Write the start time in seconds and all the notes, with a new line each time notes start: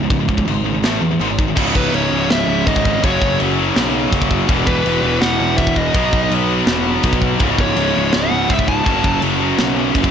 0.03 C#2 G#2
0.10 C#1 C#2 G#2, kick, china
0.20 C#2 G#2
0.29 C#1 C#2 G#2, kick
0.37 C#2 G#2, kick
0.46 G#1 C#2 G#2, china
0.66 C#2 G#2
0.75 C#2 G#2
0.83 A1 A2 E3 A3, snare, china
1.01 E2 A2 E3
1.11 A2 E3
1.20 G#1 G#2 D#3 G#3, china
1.29 G#2 D#3
1.39 G#2 D#3, kick
1.48 G#2 D#3
1.54 C#1 C#2 G#3 C#4 E4 C#5, kick, crash
1.58 G#2 C#3
1.75 C#1 B4, kick
1.93 C#1 C#5, crash
2.11 C#1 C#2 G#2 C#3
2.30 C#1 E5, snare, crash
2.47 C#1
2.67 G#1 D#5, kick, crash
2.76 kick
2.85 kick
3.03 F#1 F#2 C#3 F#3 A3 F#4 C#5, kick, crash
3.22 F#1, kick
3.40 F#1, crash
3.57 F#2 C#3 F#3
3.76 B1, snare, crash
4.12 F#1, kick, crash
4.22 kick
4.31 kick
4.46 E1 E2 B2 G#3 B3 E4 B4, kick, crash
4.51 E3
4.67 E1 B4, kick
4.85 E1, crash
5.03 E1 E2 B2 E3
5.21 E1 F#5, snare, crash
5.39 E1
5.57 E1 E5, kick, crash
5.67 kick
5.76 D#5, kick
5.92 B1 B2 F#3 D#4, kick, crash
5.97 F#3 B3
6.13 B1, kick
6.30 B1, crash
6.50 B2 F#3 B3
6.67 E1, snare, crash
7.03 B1, kick, crash
7.13 kick
7.22 kick
7.39 C#1 C#2 G#2 G#3 C#4 E4 C#5, kick, crash
7.44 C#3
7.58 C#1 C#5, kick
7.77 C#1, crash
7.96 C#1 C#2 G#2 C#3
8.13 C#1 F#5, snare, crash
8.32 C#1
8.49 C#1 E5, kick, crash
8.59 kick
8.68 A5, kick
8.86 F#1 F#2 C#3 F#3 A3 F#4, kick, crash
9.04 F#1, kick
9.22 F#1, crash
9.42 F#2 C#3 F#3
9.59 B1, snare, crash
9.95 F#1, kick, crash
10.04 kick